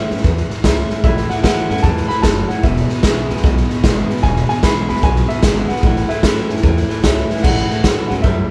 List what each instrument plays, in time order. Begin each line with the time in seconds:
Already playing: steel-string acoustic guitar A2
0.10 upright bass F#2, steel-string acoustic guitar C#4 E4, snare
0.17 snare
0.24 steel-string acoustic guitar E2, upright bass E2, kick, snare
0.37 snare
0.50 muted upright bass stroke, snare
0.64 upright bass C#2, steel-string acoustic guitar E3 A3 C#4 E4, kick, snare, hi-hat pedal
0.90 muted upright bass stroke, snare
1.04 upright bass A1, clean electric guitar A2 E3, steel-string acoustic guitar A2, upright piano E5, kick, snare
1.17 snare
1.29 clean electric guitar A2 E3, upright piano F#5, muted upright bass stroke, snare
1.43 clean electric guitar A2 F#3, steel-string acoustic guitar E3 A3 C#4 E4, upright piano F#5, kick, snare, hi-hat pedal
1.70 upright bass F#2, clean electric guitar A2 E3, steel-string acoustic guitar C#4 E4, upright piano F#5, snare
1.77 snare
1.82 upright bass E2, steel-string acoustic guitar G#2, clean electric guitar A2 E3, upright piano A5, kick, snare
1.97 snare
2.08 clean electric guitar A2 E3, upright piano B5, muted upright bass stroke, snare
2.22 upright bass F#1, steel-string acoustic guitar F#2, clean electric guitar F#3, upright piano A5, kick, snare, hi-hat pedal
2.48 clean electric guitar A2 E3, upright piano F#5, snare
2.63 upright bass E1, steel-string acoustic guitar E2, clean electric guitar E2 B2, upright piano E5, kick, snare
2.76 snare
2.89 clean electric guitar E2 B2, muted upright bass stroke, snare
3.03 upright bass B1, clean electric guitar C#3, steel-string acoustic guitar D3 G#3 B3 E4, kick, snare, hi-hat pedal
3.28 upright bass D2, clean electric guitar E2 B2, steel-string acoustic guitar B3 E4, snare
3.37 snare
3.43 upright bass B1, clean electric guitar E2 B2, steel-string acoustic guitar B2, kick, snare
3.57 snare
3.69 clean electric guitar E2 B2, snare
3.83 upright bass G#1, clean electric guitar E2 C#3, steel-string acoustic guitar D3 G#3 B3 E4, kick, snare, hi-hat pedal
4.09 clean electric guitar E2 B2, steel-string acoustic guitar B3 E4, muted upright bass stroke, snare
4.17 snare
4.23 upright bass E1, clean electric guitar E2 B2, steel-string acoustic guitar E2, upright piano G#5, kick, snare
4.36 snare
4.49 clean electric guitar E2 B2, upright piano G#5, snare
4.63 upright bass B1, clean electric guitar E2 C#3, steel-string acoustic guitar D3 G#3 B3 E4, upright piano B5, kick, snare, hi-hat pedal
4.89 upright bass D2, clean electric guitar E2 B2, steel-string acoustic guitar B3 E4, upright piano B5, snare
4.96 snare
5.03 upright bass B1, clean electric guitar E2 B2, steel-string acoustic guitar B2, upright piano G#5, kick, snare
5.16 snare
5.28 clean electric guitar E2 B2, upright piano E5, snare
5.42 upright bass G#1, clean electric guitar E2 C#3, steel-string acoustic guitar D3 G#3 B3 E4, kick, snare, hi-hat pedal
5.68 clean electric guitar E2 B2, steel-string acoustic guitar B3 E4, upright piano F#5, muted upright bass stroke, snare
5.76 snare
5.83 upright bass A1, clean electric guitar A2 E3, steel-string acoustic guitar A2, kick, snare
5.96 snare
6.08 clean electric guitar A2 E3, upright piano E5, snare
6.23 upright bass E2, clean electric guitar A2 F#3, steel-string acoustic guitar E3 A3 C#4 E4, upright piano E5, kick, snare, hi-hat pedal
6.48 upright bass F#2, clean electric guitar A2 E3, steel-string acoustic guitar C#4 E4, snare
6.56 snare
6.63 steel-string acoustic guitar E2, upright bass E2, clean electric guitar A2 E3, kick, snare
6.77 snare
6.89 clean electric guitar A2 E3, muted upright bass stroke, snare
7.03 upright bass C#2, clean electric guitar A2 F#3, steel-string acoustic guitar E3 A3 C#4 E4, kick, snare, hi-hat pedal
7.29 clean electric guitar A2 E3, muted upright bass stroke, snare
7.37 snare
7.43 upright bass A1, clean electric guitar A2 E3, steel-string acoustic guitar A2, upright piano F#5, kick, snare, crash
7.58 snare
7.69 clean electric guitar A2 E3, muted upright bass stroke, snare
7.84 upright bass C#2, clean electric guitar A2 F#3, steel-string acoustic guitar E3 A3 C#4 E4, kick, snare, hi-hat pedal
8.08 upright bass D2, clean electric guitar A2 F#3, steel-string acoustic guitar C#4 E4, upright piano F#5, snare
8.22 steel-string acoustic guitar E2, upright bass F#2, clean electric guitar A2 G3, upright piano E5, kick, snare